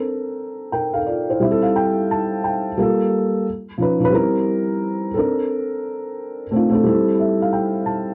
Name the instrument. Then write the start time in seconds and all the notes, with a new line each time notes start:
felt piano
Already playing: C4 D4 A4 A#4
0.72 A#4 G5
0.93 A4 F5
1.06 F4 D5
1.30 E4 C5
1.39 G3 C4 E4 E5
1.44 G4
1.51 A4
1.62 F5
1.76 G5
2.11 A5
2.44 G5
2.77 G3 A#3 F4
2.82 A4
3.78 F3 C#4 D#4
3.82 B4
4.00 F3 C#4 D#4
4.05 B4
4.10 G3 C4 E4
4.15 A#4
5.14 C4 D4 A4
5.19 A#4
6.51 A3 C4 D4
6.56 F4
6.70 A3 C4 D4
6.75 A4
6.83 G3 C4 E4
6.89 A4
7.20 E5
7.42 F5
7.53 G5
7.86 A5